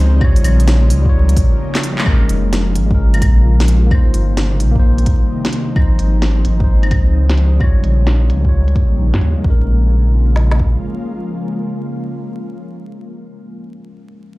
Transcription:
Already playing: C#2 C#3 F3 G#3 C4 D#4 C5
0.16 G3 F4
0.21 D#2 G3 A#3 C#5, kick, claves
0.36 open hi-hat
0.44 A#1, open hi-hat, claves
0.60 closed hi-hat
0.68 snare, closed hi-hat
0.90 C#2, open hi-hat
1.01 G3
1.06 F4 C#5, kick
1.29 closed hi-hat
1.37 A#1, kick, open hi-hat
1.75 clap, snare
1.83 open hi-hat
1.98 G#3, clap
2.06 A#1 C#3 F3 G#3 A#3 C#4 F4 A#4, kick, claves
2.29 F1, closed hi-hat
2.53 snare, closed hi-hat
2.75 G#1, closed hi-hat
2.87 G#3
2.91 C#4 A#4, kick
3.14 closed hi-hat, claves
3.22 A#1, kick, closed hi-hat, claves
3.60 snare
3.68 closed hi-hat
3.86 A#3
3.90 C2 C3 D#3 G3 A#3 D#4 C5, kick, claves
4.14 G1, closed hi-hat
4.37 snare, closed hi-hat
4.60 A#1, closed hi-hat
4.72 A#3 D#4
4.76 kick
4.80 C5
4.98 closed hi-hat
5.06 kick, closed hi-hat
5.45 snare
5.53 closed hi-hat
5.72 C#2 C#3 F3 C4 D#4, kick, claves
5.76 G#3 C5
5.99 G#1, closed hi-hat
6.22 snare, closed hi-hat
6.45 G#1, closed hi-hat
6.56 F3 D#4
6.60 C5, kick
6.83 closed hi-hat, claves
6.91 C#2, kick, closed hi-hat, claves
7.29 snare
7.37 closed hi-hat
7.56 G3 F4
7.60 D#2 G3 A#3 C#5, kick, claves
7.83 A#1, closed hi-hat
8.07 snare, closed hi-hat
8.29 C#2, closed hi-hat
8.41 G3
8.45 F4, kick
8.49 C#5
8.68 closed hi-hat
8.76 kick, closed hi-hat
8.99 A#1
9.14 G2, snare
9.21 D#2, closed hi-hat
9.38 G#3
9.44 A#1 C#3 F3 G#3 A#3 C#4 F4, kick
9.50 A#4
10.36 snare
10.51 snare
10.59 kick

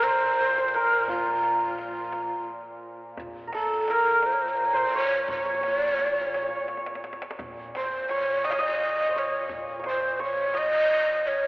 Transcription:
Already playing: A#2 A#4
0.03 C5, tombak tek
0.58 C5
0.68 C5
0.75 A#4
1.08 A#1 F4, tombak dum
1.43 tombak tek
1.78 tombak tek
2.12 tombak tek
3.17 A#1 A#2, tombak dum
3.47 A#4
3.53 A4, tombak tek
3.88 A#4, tombak tek
4.22 C5, tombak tek
4.33 C#5
4.42 C5
4.49 C#5
4.57 C5
4.65 C#5
4.73 C5
4.95 C#5
5.28 A#1 C#5, tombak dum
5.37 C#5
5.45 C#5
5.54 C#5
5.61 C#5, tombak tek
5.68 C#5
5.76 C#5 D5
5.84 C#5
5.91 C#5
5.99 C#5, tombak tek
6.06 C#5 D5
6.13 C#5
6.19 C#5
6.27 C#5
6.34 C#5, tombak tek
6.42 C#5
6.49 C#5
6.68 tombak tek
6.77 tombak ka
6.86 tombak tek
6.95 tombak ka
7.04 tombak tek
7.13 tombak ka
7.22 tombak tek
7.31 tombak ka
7.39 A#1 A#2, tombak dum
7.75 C5, tombak tek
8.09 C#5, tombak tek
8.44 D#5, tombak tek
8.49 C#5 D#5 F5
8.59 D#5
9.09 C5
9.16 C#5
9.49 A#1, tombak dum
9.79 C#5
9.84 C5, tombak tek
9.90 C5
10.19 C#5, tombak tek
10.24 C#5
10.54 D#5, tombak tek
11.27 C#5

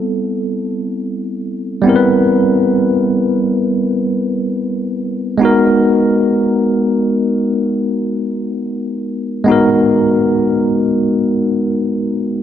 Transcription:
Already playing: G3 B3 C4 E4 A4
1.82 G3 B3 C4
1.87 E4 A#4
1.96 B4
5.38 G#3 B3 D#4
5.43 F#4 A#4
9.44 G#3 B3 D#4
9.50 F#4 A#4

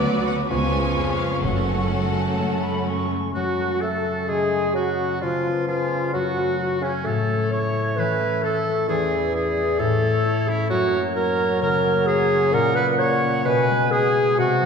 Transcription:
Already playing: D2 D3 F#3 B3 F#4 B4 D5 D6
0.06 B3
0.21 A3
0.26 F#5
0.35 B3
0.49 C#2 C#3 F3 G#3 B3 C#4 F4 B4 G#5 C#6
0.66 G#3
0.82 C#4
0.96 F2 B3
1.13 A3
1.19 F5
1.28 B3
1.42 F#1 F#2 F#3 A3 C#4 F#4 A4 F#5 C#6
1.61 C#3
1.76 C#4
1.92 A3 A5
2.08 G#3
2.24 A3
2.39 F#2 A3 F#4
2.55 C#3
2.63 B5
2.71 C#4
2.87 A3 C#6
3.03 G#3
3.19 A3
3.34 F#2 F#3 F#4
3.59 A3
3.81 A3 F#4 A4
4.05 C#4
4.28 C#3 G#3 G#4
4.52 A3
4.74 F#3 F#4
4.99 C#4
5.21 C#3 F3 F4
5.46 B3
5.68 F3 F4 G#4
5.92 D4
6.13 F#2 F#3 F#4
6.37 A3
6.61 F#4
6.81 C#3 C#4
7.04 A2 A3 A4 C#5
7.28 A3
7.50 E4 C#5
7.74 C#4
7.96 E3 B4
8.20 A3
8.43 E4 A4
8.66 C#4
8.88 E2 E3 G#4 D5
9.11 B3
9.34 E4 G#4
9.57 D4
9.79 A2 A3 A4 C#5
10.02 A3
10.25 E4
10.48 C#4 E4
10.70 F#2 F#3 F#4 C#5
10.93 A#3
11.15 F#4 A#4 C#5
11.39 C#4
11.61 C#3 A#4 C#5
11.85 A#3
12.06 F#4 G#4
12.30 C#4
12.52 A#2 A#4 F#5
12.75 A#3 B4
12.99 F#4 C#5 F#5
13.22 C#4
13.45 B2 B4 G#5
13.69 G#3
13.91 G#4 G#5
14.15 D#4
14.37 C3 F#4 F#5
14.61 F#3

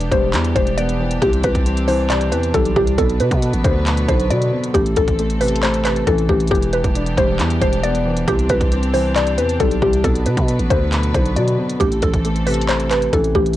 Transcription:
Already playing: E1 E3 B3 D4 G4
0.01 closed hi-hat
0.11 E1 G3 C5, kick, closed hi-hat
0.34 E2 E3, clap, closed hi-hat
0.44 closed hi-hat
0.55 E1 G3 C5, kick, closed hi-hat
0.67 closed hi-hat
0.78 B3 D5, closed hi-hat
0.89 closed hi-hat
1.00 E3
1.11 closed hi-hat
1.22 C2 C3 C4 G4, kick, closed hi-hat
1.33 closed hi-hat
1.43 C2 B4, kick, closed hi-hat
1.55 kick, closed hi-hat
1.66 C4, closed hi-hat
1.77 closed hi-hat
1.88 E3 C5, open hi-hat
2.10 C3 D5, clap, closed hi-hat
2.21 closed hi-hat
2.32 E2 E3 B4, closed hi-hat
2.43 closed hi-hat
2.54 B1 G3 A4, kick, closed hi-hat
2.65 closed hi-hat
2.76 C2 C3 G4, kick
2.87 closed hi-hat
2.98 B1 B2 F#3 B3 A4 B4, kick, closed hi-hat
3.10 closed hi-hat
3.20 B2 B4, closed hi-hat
3.31 B2, kick, closed hi-hat
3.42 B3, closed hi-hat
3.53 A1, closed hi-hat
3.64 D2 D3 C5, kick, closed hi-hat
3.86 B2, clap, closed hi-hat
3.97 closed hi-hat
4.08 B1 D3 C5, kick, closed hi-hat
4.20 closed hi-hat
4.30 B2 F#3 D5, closed hi-hat
4.42 closed hi-hat
4.53 B2
4.64 closed hi-hat
4.74 A1 A2 E3 A3 C4 G4 A4, kick, closed hi-hat
4.86 closed hi-hat
4.96 A1 A4, kick, closed hi-hat
5.08 kick, closed hi-hat
5.19 A3, closed hi-hat
5.30 closed hi-hat
5.41 C3 B4, closed hi-hat, open hi-hat
5.48 closed hi-hat
5.56 closed hi-hat
5.63 A2 C5, clap, closed hi-hat
5.74 closed hi-hat
5.85 C3 B4, clap, closed hi-hat
5.96 closed hi-hat
6.07 A1 E3 A4, kick, closed hi-hat
6.18 closed hi-hat
6.29 A1 A2 G4, kick
6.40 closed hi-hat
6.47 E1 E3 B3 D4 G4, kick, closed hi-hat
6.55 closed hi-hat
6.62 closed hi-hat
6.73 B4, closed hi-hat
6.84 E1, kick, closed hi-hat
6.95 D4, closed hi-hat
7.06 closed hi-hat
7.17 E1 G3 C5, kick, closed hi-hat
7.39 E2 E3, clap, closed hi-hat
7.50 closed hi-hat
7.61 E1 G3 C5, kick, closed hi-hat
7.73 closed hi-hat
7.83 B3 D5, closed hi-hat
7.95 closed hi-hat
8.06 E3
8.17 closed hi-hat
8.28 C2 C3 C4 G4, kick, closed hi-hat
8.39 closed hi-hat
8.49 C2 B4, kick, closed hi-hat
8.61 kick, closed hi-hat
8.72 C4, closed hi-hat
8.83 closed hi-hat
8.94 E3 C5, open hi-hat
9.16 C3 D5, clap, closed hi-hat
9.27 closed hi-hat
9.38 E2 E3 B4, closed hi-hat
9.49 closed hi-hat
9.60 B1 G3 A4, kick, closed hi-hat
9.71 closed hi-hat
9.82 C2 C3 G4, kick
9.93 closed hi-hat
10.04 B1 B2 F#3 B3 A4 B4, kick, closed hi-hat
10.15 closed hi-hat
10.26 B2 B4, closed hi-hat
10.37 B2, kick, closed hi-hat
10.48 B3, closed hi-hat
10.59 A1, closed hi-hat
10.70 D2 D3 C5, kick, closed hi-hat
10.92 B2, clap, closed hi-hat
11.03 closed hi-hat
11.14 B1 D3 C5, kick, closed hi-hat
11.26 closed hi-hat
11.36 B2 F#3 D5, closed hi-hat
11.48 closed hi-hat
11.59 B2
11.70 closed hi-hat
11.80 A1 A2 E3 A3 C4 G4 A4, kick, closed hi-hat
11.92 closed hi-hat
12.02 A1 A4, kick, closed hi-hat
12.14 kick, closed hi-hat
12.25 A3, closed hi-hat
12.36 closed hi-hat
12.47 C3 B4, closed hi-hat, open hi-hat
12.54 closed hi-hat
12.61 closed hi-hat
12.69 A2 C5, clap, closed hi-hat
12.80 closed hi-hat
12.91 C3 B4, clap, closed hi-hat
13.02 closed hi-hat
13.13 A1 E3 A4, kick, closed hi-hat
13.24 closed hi-hat
13.35 A1 A2 G4, kick
13.46 closed hi-hat
13.53 closed hi-hat

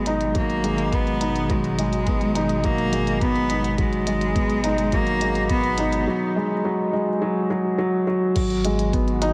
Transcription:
Already playing: G#1 B2 D#3 F#3 G#3 B3 F#4
0.06 D#4, closed hi-hat
0.21 closed hi-hat
0.35 F#3 A#3, kick, closed hi-hat
0.50 closed hi-hat
0.64 G#3, closed hi-hat
0.78 closed hi-hat
0.92 B3, kick, closed hi-hat
1.07 closed hi-hat
1.21 D#4, closed hi-hat
1.36 closed hi-hat
1.50 F#3 G#3, kick, closed hi-hat
1.64 closed hi-hat
1.79 G#3, closed hi-hat
1.93 closed hi-hat
2.07 B3, kick, closed hi-hat
2.21 closed hi-hat
2.35 D#4, closed hi-hat
2.49 closed hi-hat
2.64 F#3 A#3, kick, closed hi-hat
2.78 closed hi-hat
2.93 G#3, closed hi-hat
3.07 closed hi-hat
3.21 B3, kick, closed hi-hat
3.36 closed hi-hat
3.50 D#4, closed hi-hat
3.64 closed hi-hat
3.78 F#3 G#3, kick, closed hi-hat
3.93 closed hi-hat
4.07 G#3, closed hi-hat
4.21 closed hi-hat
4.35 B3, kick, closed hi-hat
4.50 closed hi-hat
4.64 D#4, closed hi-hat
4.78 closed hi-hat
4.92 F#3 A#3, kick, closed hi-hat
5.07 closed hi-hat
5.21 G#3, closed hi-hat
5.35 closed hi-hat
5.50 B3, kick, closed hi-hat
5.64 closed hi-hat
5.78 D#4, closed hi-hat
5.93 closed hi-hat
6.07 F#3
6.36 G#3
6.65 F#3
6.93 G#3
7.22 F#3
7.50 F#3
7.78 F#3
8.07 F#3
8.35 G#1 D#3 F#3 G#3 B3 F#4, kick, closed hi-hat, crash
8.50 closed hi-hat
8.65 G#3, closed hi-hat
8.79 closed hi-hat
8.93 B3, kick, closed hi-hat
9.08 closed hi-hat
9.22 D#4, closed hi-hat

